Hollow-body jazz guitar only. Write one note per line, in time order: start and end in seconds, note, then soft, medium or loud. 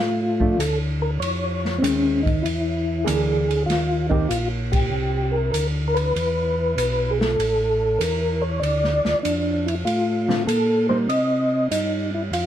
0.40 0.57 F3 medium
0.40 0.58 A3 medium
0.40 0.58 D4 medium
1.82 2.21 D#3 medium
1.82 2.21 G#3 medium
1.82 2.21 C4 medium
3.06 3.44 E3 medium
3.06 3.45 A#3 medium
3.06 3.45 D4 medium
3.06 3.45 G#4 medium
4.10 4.28 D#3 medium
4.10 4.28 A#3 medium
4.10 4.28 C4 medium
4.10 4.28 G4 medium
10.28 10.46 D3 medium
10.28 10.46 A3 medium
10.28 10.46 C4 medium
10.28 10.46 F4 medium
10.90 11.07 G3 medium
10.90 11.07 A#3 medium
10.90 11.08 D#4 medium